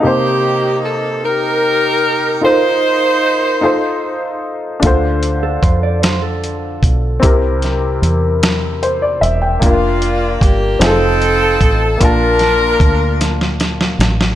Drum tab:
HH |------------|------------|x-x-x-x-x-x-|x-x-x-x-x-x-|
SD |------------|------------|------o-----|--o---o-----|
BD |------------|------------|o---o-----o-|o-----------|

HH |x-x-x-x-x-x-|x-x-x-x-x-x-|
SD |------o-----|--o---oooooo|
BD |o---o-----o-|o---o-------|